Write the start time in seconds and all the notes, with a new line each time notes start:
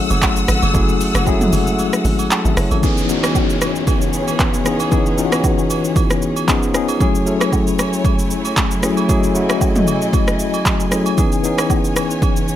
Already playing: F#3 A3 C#4 E4 G#4 F#5 E6
0.10 F#1, high agogo, shaker
0.22 G#1, kick, clap, low woodblock, shaker
0.37 shaker
0.48 G#1, cross-stick, open hi-hat, shaker
0.62 F#1, high agogo, shaker
0.73 F#1 F#3 A3 C#4 E4 G#4, kick, high agogo, shaker
0.89 shaker
1.01 open hi-hat, shaker
1.15 F#1, cross-stick, high agogo, shaker
1.25 F#3 G#3 C#4 E4 G#4, kick, low woodblock, shaker
1.32 A3
1.41 mid tom, shaker
1.53 F#1, open hi-hat, high agogo, shaker
1.67 shaker
1.79 high agogo, shaker
1.93 cross-stick, shaker
2.05 G#1, open hi-hat, shaker
2.19 high agogo, shaker
2.31 A5, clap, low woodblock, shaker
2.45 G#1 G#4 E5, shaker
2.57 F#1 E4 C#5, cross-stick, open hi-hat, shaker
2.71 G#1 C#4 A4, high agogo, shaker
2.82 E3 B3 C#4 D#4 G#4 C#5, kick, downlifter, high agogo, shaker
2.98 shaker
3.08 E3 B3 C#4 D#4 F#4, shaker
3.23 cross-stick, high agogo, shaker
3.35 kick, low woodblock, shaker
3.50 shaker
3.61 cross-stick, high agogo, shaker
3.76 shaker
3.87 kick, high agogo, shaker
4.02 shaker
4.13 shaker
4.28 high agogo, shaker
4.40 kick, clap, shaker
4.54 shaker
4.64 E3 B3 C#4 D#4 G#4, cross-stick, shaker
4.80 high agogo, shaker
4.90 E3 B3 C#4 D#4 G#4, kick, high agogo, shaker
5.06 shaker
5.17 E3 B3 C#4 D#4 F4, shaker
5.26 F#4
5.32 cross-stick, high agogo, shaker
5.44 kick, low woodblock, shaker
5.59 shaker
5.70 high agogo, shaker
5.85 shaker
5.96 kick, high agogo, shaker
6.10 cross-stick, shaker
6.22 shaker
6.36 high agogo, shaker
6.47 F3 B3 C#4 D#4 G#4 C#5, kick, clap, shaker
6.63 shaker
6.73 F3 B3 C#4 D#4 G#4, cross-stick, shaker
6.89 high agogo, shaker
6.99 F#3 A3 C#4 E4 G#4 G#5, kick, high agogo, shaker
7.15 shaker
7.25 F#3 A3 C#4 E4 A4, shaker
7.40 cross-stick, high agogo, shaker
7.52 kick, low woodblock, shaker
7.67 shaker
7.79 cross-stick, high agogo, shaker
7.93 shaker
8.05 kick, high agogo, shaker
8.19 shaker
8.31 shaker
8.45 high agogo, shaker
8.57 kick, clap, shaker
8.71 shaker
8.82 F#3 A3 C#4 E4 G#4, cross-stick, shaker
8.97 high agogo, shaker
9.08 F#3 A3 C#4 E4 G#4 D#5, kick, high agogo, shaker
9.24 shaker
9.34 F#3 A3 C#4 E4 F#4, shaker
9.49 cross-stick, high agogo, shaker
9.61 kick, low woodblock, shaker
9.76 mid tom, shaker
9.87 high agogo, shaker
10.02 shaker
10.13 kick, high agogo, shaker
10.28 cross-stick, shaker
10.39 shaker
10.54 high agogo, shaker
10.66 kick, clap, shaker
10.80 shaker
10.91 F#3 A3 C#4 E4 G#4, cross-stick, shaker
11.06 high agogo, shaker
11.17 E3 B3 C#4 D#4 G#4 C#5, kick, high agogo, shaker
11.32 shaker
11.43 E3 B3 C#4 D#4 G#4, shaker
11.58 cross-stick, high agogo, shaker
11.70 kick, low woodblock, shaker
11.85 shaker
11.96 cross-stick, high agogo, shaker
12.11 shaker
12.22 kick, high agogo, shaker
12.37 shaker
12.48 shaker